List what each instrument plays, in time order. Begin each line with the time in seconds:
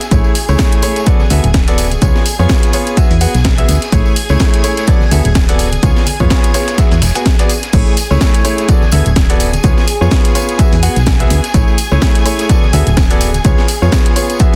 Already playing: string machine G#4 G#5
0.01 snare, closed hi-hat, tambourine
0.11 fm bass A1, grand piano A3 E4 G#4 C#5, string machine G#4 G#5, kick, closed hi-hat, tambourine, shaker
0.24 tambourine
0.35 open hi-hat, tambourine, shaker
0.48 fm bass C#2, grand piano A3 E4 G#4 C#5, tambourine
0.59 kick, snare, tambourine, shaker
0.72 snare, closed hi-hat, tambourine
0.82 grand piano A3 E4 G#4 C#5, open hi-hat, tambourine, shaker
0.96 snare, closed hi-hat, tambourine
1.06 grand piano B3 F#4 A4 D5, kick, closed hi-hat, tambourine, shaker
1.20 snare, tambourine, high conga
1.30 fm bass D2, grand piano B3 F#4 A4 E5, open hi-hat, tambourine, high conga, shaker
1.44 fm bass D1, closed hi-hat, tambourine
1.54 kick, snare, closed hi-hat, tambourine, shaker
1.68 grand piano B3 F#4 A4 D5, closed hi-hat, tambourine
1.78 snare, open hi-hat, tambourine, shaker
1.91 closed hi-hat, tambourine, high conga
2.02 fm bass C#2, grand piano B3 F4 G#4 C#5, kick, closed hi-hat, tambourine, shaker
2.15 snare, tambourine
2.26 open hi-hat, tambourine, shaker
2.39 fm bass F2, grand piano B3 F4 G#4 C#5, tambourine
2.49 kick, snare, tambourine, shaker
2.63 snare, closed hi-hat, tambourine
2.73 grand piano B3 F4 G#4 C#5, open hi-hat, tambourine, shaker
2.87 closed hi-hat, tambourine
2.97 grand piano B3 F#4 G#4 E5, kick, closed hi-hat, tambourine, shaker
3.10 fm bass E2, closed hi-hat, tambourine
3.21 grand piano B3 F#4 G#4 F#5, open hi-hat, tambourine, shaker
3.34 fm bass B1, snare, closed hi-hat, tambourine
3.44 kick, snare, closed hi-hat, tambourine, shaker
3.58 grand piano B3 F#4 G#4 E5, closed hi-hat, tambourine
3.68 fm bass D2, snare, open hi-hat, tambourine, shaker
3.82 snare, closed hi-hat, tambourine
3.92 fm bass A1, grand piano A3 E4 G#4 C#5, kick, closed hi-hat, tambourine, shaker
4.05 tambourine
4.16 open hi-hat, tambourine, shaker
4.29 fm bass C#2, grand piano A3 E4 G#4 C#5, tambourine
4.40 kick, snare, tambourine, shaker
4.54 snare, closed hi-hat, tambourine
4.64 grand piano A3 E4 G#4 C#5, open hi-hat, tambourine, shaker
4.77 snare, closed hi-hat, tambourine
4.87 grand piano B3 F#4 A4 D5, kick, closed hi-hat, tambourine, shaker
5.00 snare, tambourine, high conga
5.11 fm bass D2, grand piano B3 F#4 A4 E5, open hi-hat, tambourine, high conga, shaker
5.25 fm bass D1, closed hi-hat, tambourine
5.35 kick, snare, closed hi-hat, tambourine, shaker
5.49 grand piano B3 F#4 A4 D5, closed hi-hat, tambourine
5.59 snare, open hi-hat, tambourine, shaker
5.72 closed hi-hat, tambourine, high conga
5.83 fm bass C#2, grand piano B3 F4 G#4 C#5, kick, closed hi-hat, tambourine, shaker
5.96 snare, tambourine
6.07 open hi-hat, tambourine, high conga, shaker
6.20 fm bass F2, grand piano B3 F4 G#4 C#5, kick, tambourine
6.30 kick, snare, tambourine, shaker
6.44 snare, closed hi-hat, tambourine
6.54 grand piano B3 F4 G#4 C#5, snare, open hi-hat, tambourine, shaker
6.68 snare, closed hi-hat, tambourine, shaker
6.78 grand piano B3 F#4 G#4 E5, kick, snare, closed hi-hat, tambourine, shaker
6.91 fm bass E2, snare, tambourine, shaker
7.02 fm bass E1, snare, open hi-hat, tambourine, shaker
7.15 grand piano B3 F#4 G#4 G#5, snare, closed hi-hat, tambourine, shaker
7.26 kick, snare, closed hi-hat, tambourine, shaker
7.39 grand piano B3 F#4 G#4 D5, snare, closed hi-hat, tambourine, shaker
7.49 snare, open hi-hat, tambourine, shaker
7.63 snare, closed hi-hat, tambourine
7.73 fm bass A1, grand piano A3 E4 G#4 C#5, string machine G#4 G#5, kick, closed hi-hat, tambourine, crash, shaker
7.86 tambourine
7.97 open hi-hat, tambourine, shaker
8.11 fm bass C#2, grand piano A3 E4 G#4 C#5, tambourine
8.21 kick, snare, tambourine, shaker
8.34 snare, closed hi-hat, tambourine
8.45 grand piano A3 E4 G#4 C#5, open hi-hat, tambourine, shaker
8.58 snare, closed hi-hat, tambourine
8.68 grand piano B3 F#4 A4 D5, kick, closed hi-hat, tambourine, shaker
8.82 snare, tambourine, high conga
8.91 fm bass D2, grand piano B3 F#4 A4 E5, open hi-hat, tambourine, high conga, shaker
9.06 fm bass D1, closed hi-hat, tambourine
9.16 kick, snare, closed hi-hat, tambourine, shaker
9.30 grand piano B3 F#4 A4 D5, closed hi-hat, tambourine
9.40 snare, open hi-hat, tambourine, shaker
9.53 closed hi-hat, tambourine, high conga
9.64 fm bass C#2, grand piano B3 F4 G#4 C#5, kick, closed hi-hat, tambourine, shaker
9.77 snare, tambourine
9.88 open hi-hat, tambourine, shaker
10.01 fm bass F2, grand piano B3 F4 G#4 C#5, tambourine
10.11 kick, snare, tambourine, shaker
10.25 snare, closed hi-hat, tambourine
10.35 grand piano B3 F4 G#4 C#5, open hi-hat, tambourine, shaker
10.49 closed hi-hat, tambourine
10.59 grand piano B3 F#4 G#4 E5, kick, closed hi-hat, tambourine, shaker
10.72 fm bass E2, closed hi-hat, tambourine
10.83 grand piano B3 F#4 G#4 F#5, open hi-hat, tambourine, shaker
10.96 fm bass B1, snare, closed hi-hat, tambourine
11.06 kick, snare, closed hi-hat, tambourine, shaker
11.20 grand piano B3 F#4 G#4 E5, closed hi-hat, tambourine
11.30 fm bass D2, snare, open hi-hat, tambourine, shaker
11.44 snare, closed hi-hat, tambourine
11.54 fm bass A1, grand piano A3 E4 G#4 C#5, kick, closed hi-hat, tambourine, shaker
11.68 tambourine
11.78 open hi-hat, tambourine, shaker
11.91 fm bass C#2, grand piano A3 E4 G#4 C#5, tambourine
12.02 kick, snare, tambourine, shaker
12.15 snare, closed hi-hat, tambourine
12.26 grand piano A3 E4 G#4 C#5, open hi-hat, tambourine, shaker
12.39 snare, closed hi-hat, tambourine
12.49 grand piano B3 F#4 A4 D5, kick, closed hi-hat, tambourine, shaker
12.63 snare, tambourine, high conga
12.73 fm bass D2, grand piano B3 F#4 A4 E5, open hi-hat, tambourine, high conga, shaker
12.87 fm bass D1, closed hi-hat, tambourine
12.97 kick, snare, closed hi-hat, tambourine, shaker
13.10 grand piano B3 F#4 A4 D5, closed hi-hat, tambourine
13.21 snare, open hi-hat, tambourine, shaker
13.34 closed hi-hat, tambourine, high conga
13.44 fm bass C#2, grand piano B3 F4 G#4 C#5, kick, closed hi-hat, tambourine, shaker
13.58 snare, tambourine
13.68 open hi-hat, tambourine, shaker
13.82 fm bass F2, grand piano B3 F4 G#4 C#5, tambourine
13.92 kick, snare, tambourine, shaker
14.06 snare, closed hi-hat, tambourine
14.16 grand piano B3 F4 G#4 C#5, open hi-hat, tambourine, shaker
14.30 closed hi-hat, tambourine
14.39 grand piano B3 F#4 G#4 E5, kick, closed hi-hat, tambourine, shaker